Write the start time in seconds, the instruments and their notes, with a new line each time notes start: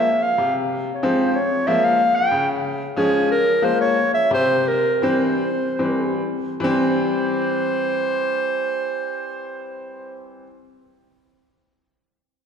Already playing: clarinet E5
0.23 clarinet F5
0.38 upright piano C3
0.95 clarinet C#5
1.03 upright piano F3 G#3 C4, clarinet C5
1.36 clarinet C#5
1.67 upright piano F3 G#3 A#3, clarinet E5
1.85 clarinet F5
2.15 clarinet G5
2.31 upright piano C#3
2.96 upright piano F3 G#3 C#4, clarinet G#4
3.32 clarinet A#4
3.62 upright piano F3 G#3 A#3, clarinet C5
3.81 clarinet C#5
4.14 clarinet E5
4.31 upright piano C3, clarinet C5
4.68 clarinet A#4
5.02 upright piano E3 G3 C4, clarinet C5
5.79 upright piano E3 G3 C4
6.60 upright piano E3 G3, clarinet C5
6.64 upright piano C4